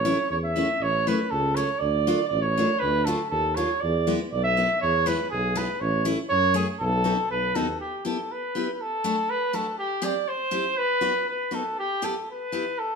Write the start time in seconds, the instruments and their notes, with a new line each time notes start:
Already playing: tuba A1, flugelhorn C#5
0.05 steel-string acoustic guitar A3 C#4 E4
0.30 tuba E2, flugelhorn C#5
0.44 flugelhorn E5
0.56 steel-string acoustic guitar A3 C#4 E4
0.80 tuba A1, flugelhorn C#5
1.07 steel-string acoustic guitar A3 C#4 E4, flugelhorn B4
1.31 tuba C#2, flugelhorn A4
1.55 steel-string acoustic guitar A3 C#4 E4, flugelhorn C#5
1.79 tuba D2, flugelhorn D5
2.07 steel-string acoustic guitar A3 D4 F4
2.29 tuba A1, flugelhorn D5
2.41 flugelhorn C#5
2.57 steel-string acoustic guitar A3 D4 F4
2.79 tuba D2, flugelhorn B4
3.05 steel-string acoustic guitar A3 D4 F4, flugelhorn A4
3.30 tuba D#2, flugelhorn A4
3.55 steel-string acoustic guitar A3 D4 F4, flugelhorn C#5
3.81 tuba E2, flugelhorn D5
4.07 steel-string acoustic guitar G#3 B3 E4
4.32 tuba B1, flugelhorn D5
4.44 flugelhorn E5
4.57 steel-string acoustic guitar G#3 B3 E4
4.81 tuba E2, flugelhorn C#5
5.06 steel-string acoustic guitar G#3 B3 E4, flugelhorn B4
5.30 tuba B1, flugelhorn G#4
5.56 steel-string acoustic guitar G#3 B3 E4, flugelhorn B4
5.80 tuba A1, flugelhorn C#5
6.05 steel-string acoustic guitar A3 C#4 E4
6.29 tuba F#2, flugelhorn C#5
6.54 steel-string acoustic guitar A3 C#4 E4, flugelhorn G#4
6.80 tuba B1, flugelhorn A4
7.04 steel-string acoustic guitar B3 D#4 F#4
7.29 tuba B1, flugelhorn B4
7.55 tuba D#2, steel-string acoustic guitar B3 D#4 F#4, flugelhorn A4
7.80 flugelhorn G4
8.05 steel-string acoustic guitar B3 E4 G4, flugelhorn A4
8.32 flugelhorn B4
8.55 steel-string acoustic guitar B3 E4 G4
8.73 flugelhorn B4
8.81 flugelhorn A4
9.04 steel-string acoustic guitar A3 D4 F#4
9.30 flugelhorn B4
9.53 steel-string acoustic guitar A3 D4 F#4, flugelhorn A4
9.79 flugelhorn G4
10.02 steel-string acoustic guitar C4 E4 G4, flugelhorn D5
10.28 flugelhorn C5
10.51 steel-string acoustic guitar C4 E4 G4
10.77 flugelhorn B4
11.01 steel-string acoustic guitar B3 D#4 F#4
11.29 flugelhorn B4
11.51 steel-string acoustic guitar B3 D#4 F#4, flugelhorn A4
11.79 flugelhorn G4
12.02 steel-string acoustic guitar B3 E4 G4, flugelhorn A4
12.31 flugelhorn B4
12.52 steel-string acoustic guitar B3 E4 G4
12.79 flugelhorn A4